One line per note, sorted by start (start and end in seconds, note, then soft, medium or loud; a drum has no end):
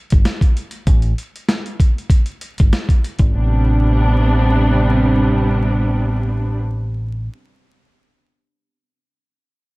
0.10 0.23 G1 medium
0.10 kick medium
0.10 closed hi-hat medium
0.25 snare loud
0.25 closed hi-hat medium
0.41 kick medium
0.41 closed hi-hat medium
0.57 closed hi-hat medium
0.71 closed hi-hat medium
0.87 1.12 A1 loud
0.87 kick loud
0.87 closed hi-hat medium
1.02 closed hi-hat soft
1.18 closed hi-hat medium
1.36 closed hi-hat medium
1.49 snare loud
1.49 closed hi-hat medium
1.66 closed hi-hat medium
1.80 kick medium
1.80 closed hi-hat medium
1.98 closed hi-hat soft
2.10 kick loud
2.10 closed hi-hat medium
2.26 closed hi-hat medium
2.41 closed hi-hat medium
2.58 2.70 G1 medium
2.58 kick medium
2.58 closed hi-hat medium
2.73 snare loud
2.73 closed hi-hat medium
2.89 kick medium
2.89 closed hi-hat medium
3.04 closed hi-hat medium
3.19 3.31 G#1 medium
3.19 kick medium
3.19 closed hi-hat medium
3.34 7.28 A1 medium
3.34 6.57 C3 medium
3.34 6.57 G3 medium
3.34 6.58 B3 medium
3.34 6.58 D4 loud